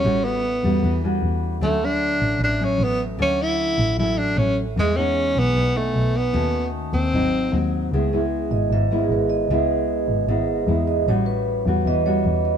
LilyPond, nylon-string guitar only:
\new Staff \with { instrumentName = "Nylon-string guitar" } { \time 4/4 \key cis \minor \tempo 4 = 152 << { <g cis' fis'>4 r8 <g cis' fis'>4 <g cis' fis'>4. | <fis a cis'>8 <fis a>2 <fis a cis'>4. | <fis a cis'>2 <fis a cis'>4 <fis a cis'>8 r8 | <gis b dis'>8 <gis b dis'>2 <b dis'>4. |
<a cis' fis'>2 <fis bis dis'>4 <fis bis dis'>4 | <gis b e'>8 <gis b e'>2 <gis b e'>4. | <gis b e'>2 <gis b e'>4 <gis b e'>4 | <g cis' fis'>4. <g cis' fis'>4 <g cis' fis'>4. | } \\ { a,2 e2 | d2 a,2 | d2 a,2 | e2 b,2 |
dis2 gis,2 | cis2 gis,2 | cis2 gis,2 | a,2 e2 | } >> }